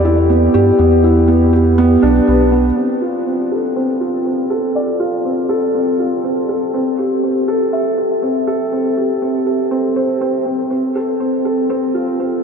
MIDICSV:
0, 0, Header, 1, 3, 480
1, 0, Start_track
1, 0, Tempo, 495868
1, 766, Time_signature, 4, 2, 24, 8
1, 12037, End_track
2, 0, Start_track
2, 0, Title_t, "Felt piano"
2, 0, Program_c, 0, 0
2, 0, Control_c, 0, 64, 127
2, 0, Note_on_c, 0, 59, 74
2, 0, Note_on_c, 0, 64, 73
2, 0, Note_on_c, 0, 67, 99
2, 0, Note_on_c, 0, 74, 78
2, 46, Note_off_c, 0, 64, 0
2, 46, Note_on_c, 0, 64, 70
2, 274, Note_off_c, 0, 64, 0
2, 285, Note_off_c, 0, 59, 0
2, 285, Note_on_c, 0, 59, 72
2, 514, Note_off_c, 0, 59, 0
2, 523, Note_off_c, 0, 67, 0
2, 523, Note_on_c, 0, 67, 95
2, 661, Note_off_c, 0, 67, 0
2, 761, Note_on_c, 0, 59, 79
2, 992, Note_off_c, 0, 59, 0
2, 1003, Note_on_c, 0, 64, 71
2, 1232, Note_off_c, 0, 64, 0
2, 1236, Note_on_c, 0, 59, 76
2, 1469, Note_off_c, 0, 59, 0
2, 1479, Note_on_c, 0, 67, 71
2, 1619, Note_off_c, 0, 67, 0
2, 1722, Note_on_c, 0, 59, 102
2, 1952, Note_off_c, 0, 59, 0
2, 1959, Note_on_c, 0, 62, 89
2, 2099, Note_off_c, 0, 62, 0
2, 2201, Note_on_c, 0, 71, 70
2, 2340, Note_off_c, 0, 71, 0
2, 2437, Note_on_c, 0, 59, 74
2, 2578, Note_off_c, 0, 59, 0
2, 2681, Note_on_c, 0, 60, 61
2, 2699, Control_c, 0, 64, 0
2, 2706, Note_off_c, 0, 74, 0
2, 2860, Control_c, 0, 64, 127
2, 2911, Note_off_c, 0, 60, 0
2, 2919, Note_on_c, 0, 65, 57
2, 3150, Note_off_c, 0, 65, 0
2, 3159, Note_on_c, 0, 60, 59
2, 3390, Note_off_c, 0, 60, 0
2, 3402, Note_on_c, 0, 69, 55
2, 3541, Note_off_c, 0, 69, 0
2, 3641, Note_on_c, 0, 60, 81
2, 3871, Note_off_c, 0, 60, 0
2, 3877, Note_on_c, 0, 65, 57
2, 4109, Note_off_c, 0, 65, 0
2, 4122, Note_on_c, 0, 60, 57
2, 4261, Note_off_c, 0, 60, 0
2, 4358, Note_on_c, 0, 69, 74
2, 4590, Note_off_c, 0, 69, 0
2, 4602, Note_on_c, 0, 74, 64
2, 4832, Note_off_c, 0, 74, 0
2, 4836, Note_on_c, 0, 65, 60
2, 5069, Note_off_c, 0, 65, 0
2, 5081, Note_on_c, 0, 60, 60
2, 5311, Note_off_c, 0, 60, 0
2, 5315, Note_on_c, 0, 69, 82
2, 5457, Note_off_c, 0, 69, 0
2, 5560, Note_on_c, 0, 60, 60
2, 5791, Note_off_c, 0, 60, 0
2, 5802, Note_on_c, 0, 65, 57
2, 6032, Note_off_c, 0, 65, 0
2, 6040, Note_on_c, 0, 60, 59
2, 6271, Note_off_c, 0, 60, 0
2, 6281, Note_on_c, 0, 69, 59
2, 6420, Note_off_c, 0, 69, 0
2, 6523, Note_on_c, 0, 60, 78
2, 6540, Control_c, 0, 64, 0
2, 6703, Control_c, 0, 64, 127
2, 6752, Note_off_c, 0, 60, 0
2, 6764, Note_on_c, 0, 67, 64
2, 6993, Note_off_c, 0, 67, 0
2, 7002, Note_on_c, 0, 60, 57
2, 7141, Note_off_c, 0, 60, 0
2, 7241, Note_on_c, 0, 69, 78
2, 7471, Note_off_c, 0, 69, 0
2, 7481, Note_on_c, 0, 76, 64
2, 7711, Note_off_c, 0, 76, 0
2, 7721, Note_on_c, 0, 67, 55
2, 7952, Note_off_c, 0, 67, 0
2, 7960, Note_on_c, 0, 60, 59
2, 8191, Note_off_c, 0, 60, 0
2, 8202, Note_on_c, 0, 69, 75
2, 8341, Note_off_c, 0, 69, 0
2, 8444, Note_on_c, 0, 60, 61
2, 8673, Note_off_c, 0, 60, 0
2, 8683, Note_on_c, 0, 67, 60
2, 8913, Note_off_c, 0, 67, 0
2, 8922, Note_on_c, 0, 60, 58
2, 9152, Note_off_c, 0, 60, 0
2, 9161, Note_on_c, 0, 69, 57
2, 9300, Note_off_c, 0, 69, 0
2, 9400, Note_on_c, 0, 60, 81
2, 9631, Note_off_c, 0, 60, 0
2, 9643, Note_on_c, 0, 72, 70
2, 9872, Note_off_c, 0, 72, 0
2, 9884, Note_on_c, 0, 60, 83
2, 10022, Note_off_c, 0, 60, 0
2, 10119, Note_on_c, 0, 60, 55
2, 10346, Note_off_c, 0, 60, 0
2, 10361, Note_on_c, 0, 60, 64
2, 10378, Control_c, 0, 64, 0
2, 10569, Control_c, 0, 64, 127
2, 10591, Note_off_c, 0, 60, 0
2, 10603, Note_on_c, 0, 69, 55
2, 10833, Note_off_c, 0, 69, 0
2, 10842, Note_on_c, 0, 60, 61
2, 11072, Note_off_c, 0, 60, 0
2, 11083, Note_on_c, 0, 69, 56
2, 11221, Note_off_c, 0, 69, 0
2, 11322, Note_on_c, 0, 60, 79
2, 11552, Note_off_c, 0, 60, 0
2, 11561, Note_on_c, 0, 65, 54
2, 11791, Note_off_c, 0, 65, 0
2, 11805, Note_on_c, 0, 60, 64
2, 11942, Note_off_c, 0, 60, 0
2, 12037, End_track
3, 0, Start_track
3, 0, Title_t, "Analog synth bass"
3, 0, Program_c, 1, 38
3, 0, Note_on_c, 1, 40, 92
3, 473, Note_off_c, 1, 40, 0
3, 529, Note_on_c, 1, 43, 75
3, 698, Note_off_c, 1, 43, 0
3, 768, Note_on_c, 1, 40, 88
3, 1911, Note_off_c, 1, 40, 0
3, 1967, Note_on_c, 1, 35, 88
3, 2137, Note_off_c, 1, 35, 0
3, 2211, Note_on_c, 1, 35, 95
3, 2632, Note_off_c, 1, 35, 0
3, 12037, End_track
0, 0, End_of_file